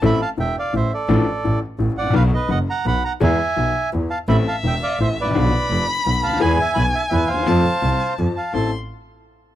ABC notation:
X:1
M:3/4
L:1/16
Q:1/4=169
K:Am
V:1 name="Violin"
z12 | z12 | z12 | z12 |
e12 | b12 | ^g12 | a8- a2 z2 |
c'2 z8 z2 |]
V:2 name="Bandoneon"
[eb]2 [fa]2 [eg]2 [df]2 [ce]2 [Ad]2- | [Ad]6 z4 [d^f]2 | [Bf]2 [B^d]2 [d^f]2 [f_b]2 [f=b]2 [f_b]2 | [e^g]8 z2 [fa]2 |
[eb]2 [fa]2 [eg]2 [df]2 [ce]2 [Bd]2- | [Bd]6 z4 [fa]2 | [^gb]2 [eg]2 [gb]2 [eg]2 [Be]2 [cf]2- | [cf]8 z2 [fa]2 |
a2 z8 z2 |]
V:3 name="Upright piano" clef=bass
[A,,,A,,E,A,CA]2 z2 [E,,,E,,]2 z2 [A,,,A,,]2 z2 | [A,,,A,,F,A,DA]2 z2 [A,,,A,,]2 z2 [A,,,A,,]2 z/2 ^G,,,/2 A,,,/2 _B,,,/2 | [B,,,B,,^D,^F,B,^F]2 z2 [^F,,,^F,,]2 z2 [B,,,B,,]2 z2 | [E,,E,^G,B,^G]2 z2 [B,,,B,,]2 z2 [E,,E,]2 z2 |
[A,,,A,,E,A,CA]2 z2 [E,,,E,,]2 z2 [A,,,A,,]2 z/2 ^G,,,/2 A,,,/2 _B,,,/2 | [B,,,B,,D,F,B,F]2 z2 [F,,,F,,]2 z2 [B,,,B,,]2 z/2 ^C,,/2 D,,/2 ^D,,/2 | [E,,E,^G,B,^G]2 z2 [B,,,B,,]2 z2 [E,,E,]2 z/2 D,,/2 ^D,,/2 E,,/2 | [F,,F,A,CA]2 z2 [C,,C,]2 z2 [F,,F,]2 z2 |
[A,,,CEA]2 z8 z2 |]
V:4 name="Double bass" clef=bass
A,,,2 z2 E,,,2 z2 A,,,2 z2 | A,,,2 z2 A,,,2 z2 A,,,2 A,,,2 | B,,,2 z2 ^F,,,2 z2 B,,,2 z2 | E,,2 z2 B,,,2 z2 E,,2 z2 |
A,,,2 z2 E,,,2 z2 A,,,2 A,,,2 | B,,,2 z2 F,,,2 z2 B,,,2 D,,2 | E,,2 z2 B,,,2 z2 E,,2 ^D,,2 | F,,2 z2 C,,2 z2 F,,2 z2 |
A,,,2 z8 z2 |]